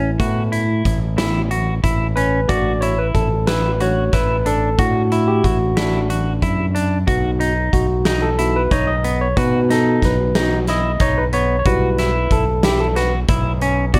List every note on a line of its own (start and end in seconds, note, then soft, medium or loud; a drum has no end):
0.00 0.16 A1 medium
0.00 0.20 E4 medium
0.20 0.81 A2 medium
0.20 0.64 A3 soft
0.20 0.64 B3 soft
0.20 0.64 E4 medium
0.20 0.43 F#4 medium
0.20 kick loud
0.20 closed hi-hat medium
0.52 0.98 E4 medium
0.52 closed hi-hat medium
0.85 1.80 A1 medium
0.85 kick medium
0.85 closed hi-hat medium
1.18 1.47 A3 soft
1.18 1.48 B3 soft
1.18 1.41 E4 medium
1.18 1.48 E4 soft
1.18 snare loud
1.18 closed hi-hat medium
1.51 1.74 F#4 medium
1.51 closed hi-hat medium
1.84 2.45 A1 medium
1.84 2.06 E4 medium
1.84 kick medium
1.84 closed hi-hat medium
2.16 2.40 C#4 medium
2.16 2.50 B4 medium
2.16 closed hi-hat medium
2.48 3.11 A1 medium
2.48 2.92 A3 medium
2.48 2.93 D4 soft
2.48 2.72 F#4 medium
2.48 2.93 F#4 medium
2.48 2.83 D5 loud
2.48 kick loud
2.48 closed hi-hat medium
2.81 3.28 E4 medium
2.81 2.98 C#5 medium
2.81 closed hi-hat medium
2.98 3.06 B4 medium
3.14 4.09 A1 medium
3.14 3.45 A4 medium
3.14 kick medium
3.14 closed hi-hat medium
3.47 3.71 E4 medium
3.47 3.81 B4 medium
3.47 snare medium
3.47 closed hi-hat medium
3.80 4.10 A3 soft
3.80 4.10 D4 soft
3.80 4.03 F#4 medium
3.80 4.10 F#4 soft
3.80 4.15 C#5 medium
3.80 closed hi-hat soft
4.13 4.75 A1 medium
4.13 4.36 E4 medium
4.13 4.47 B4 medium
4.13 kick medium
4.13 snare soft
4.13 closed hi-hat medium
4.46 4.69 D4 medium
4.46 4.80 A4 medium
4.46 closed hi-hat soft
4.78 5.40 A2 medium
4.78 5.73 A3 medium
4.78 5.73 D4 soft
4.78 5.02 F#4 medium
4.78 5.43 F#4 medium
4.78 kick loud
4.78 closed hi-hat medium
5.12 5.57 E4 medium
5.12 5.29 E4 medium
5.12 closed hi-hat soft
5.28 5.43 G4 medium
5.44 6.39 A1 medium
5.44 5.76 F#4 medium
5.44 kick medium
5.44 closed hi-hat medium
5.76 6.06 A3 soft
5.76 6.71 D4 medium
5.76 6.00 E4 medium
5.76 6.07 F#4 soft
5.76 snare loud
5.76 closed hi-hat medium
6.10 6.33 F#4 medium
6.10 closed hi-hat medium
6.42 7.04 F#2 medium
6.42 6.65 E4 medium
6.42 kick medium
6.42 closed hi-hat medium
6.75 6.98 D4 medium
6.75 closed hi-hat medium
7.07 7.69 B1 medium
7.07 7.51 B3 soft
7.07 7.51 D#4 soft
7.07 7.30 F#4 medium
7.07 7.51 F#4 medium
7.07 kick loud
7.07 closed hi-hat medium
7.40 7.86 D#4 medium
7.40 closed hi-hat medium
7.73 8.67 B1 medium
7.73 8.24 F#4 medium
7.73 kick medium
7.73 closed hi-hat medium
8.05 8.29 D#4 medium
8.05 snare loud
8.05 closed hi-hat medium
8.22 8.56 A4 medium
8.39 8.68 B3 soft
8.39 8.69 D#4 soft
8.39 8.61 E4 medium
8.39 8.69 F#4 soft
8.39 closed hi-hat medium
8.56 8.73 B4 medium
8.71 9.33 B1 medium
8.71 8.94 D#4 medium
8.71 8.88 C#5 medium
8.71 kick medium
8.71 snare soft
8.71 closed hi-hat medium
8.87 9.18 D#5 medium
9.04 9.27 B3 medium
9.04 closed hi-hat medium
9.21 9.36 C#5 medium
9.37 9.98 B2 loud
9.37 10.35 B3 medium
9.37 10.35 D#4 soft
9.37 9.60 F#4 medium
9.37 10.36 F#4 medium
9.37 9.68 B4 medium
9.37 kick loud
9.37 closed hi-hat medium
9.70 10.15 D#4 medium
9.70 10.01 A4 medium
9.70 snare soft
9.70 closed hi-hat medium
10.02 10.97 B1 medium
10.02 10.34 B4 medium
10.02 kick medium
10.02 snare soft
10.02 closed hi-hat medium
10.35 10.65 B3 soft
10.35 10.58 D#4 medium
10.35 10.65 D#4 soft
10.35 10.65 F#4 soft
10.35 snare loud
10.35 closed hi-hat medium
10.67 10.91 E4 medium
10.67 11.02 D#5 medium
10.67 snare soft
10.67 closed hi-hat medium
11.00 11.62 B1 medium
11.00 11.23 D#4 medium
11.00 11.18 C#5 medium
11.00 kick loud
11.00 snare soft
11.00 closed hi-hat medium
11.18 11.25 B4 medium
11.33 11.56 B3 medium
11.33 11.58 C#5 loud
11.33 closed hi-hat medium
11.59 11.66 C#5 medium
11.65 12.27 B1 medium
11.65 12.09 G3 medium
11.65 12.09 E4 soft
11.65 11.89 F#4 medium
11.65 12.10 F#4 medium
11.65 12.33 B4 medium
11.65 kick loud
11.65 closed hi-hat medium
11.98 12.44 E4 medium
11.98 snare soft
11.98 closed hi-hat medium
12.31 13.25 B1 medium
12.31 12.65 A4 medium
12.31 kick medium
12.31 closed hi-hat medium
12.63 12.87 E4 medium
12.63 12.79 G4 medium
12.63 snare loud
12.63 closed hi-hat medium
12.80 12.95 A4 medium
12.96 13.19 F#4 medium
12.96 13.11 B4 medium
12.96 snare soft
12.96 closed hi-hat medium
13.28 13.90 B1 medium
13.28 13.52 E4 medium
13.28 kick loud
13.28 closed hi-hat medium
13.61 13.85 C#4 medium
13.61 closed hi-hat medium
13.94 14.00 B2 medium
13.94 14.00 G3 medium
13.94 14.00 E4 soft
13.94 14.00 F#4 medium
13.94 14.00 D5 medium
13.94 kick loud
13.94 closed hi-hat medium